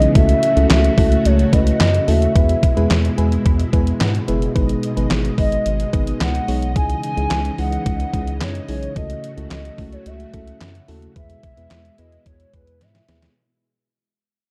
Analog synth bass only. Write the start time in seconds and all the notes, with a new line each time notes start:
0.15 C#2
0.57 C#2
0.70 C#2
0.98 C#2
1.26 C#2
1.53 C#2
1.80 F#2
2.08 D#2
2.36 E2
2.77 E2
2.90 E2
3.18 E2
3.46 E2
3.73 E2
4.01 G#2
4.28 F#1
4.56 G#1
4.97 G#1
5.11 G#1
5.38 G#1
5.66 G#1
5.93 G#1
6.21 C#2
6.48 B1
6.76 C#2
7.17 C#2
7.31 C#2
7.58 C#2
7.86 C#2
8.13 C#2
8.41 F#2
8.69 B1
8.96 C#2
9.37 C#2
9.51 C#2
9.78 C#2
10.06 C#2
10.34 C#2
10.61 F#2
10.89 D#2
11.16 E2
11.58 E2
11.71 E2
11.99 E2
12.26 E2
12.54 E2
12.81 G#2
13.09 D#2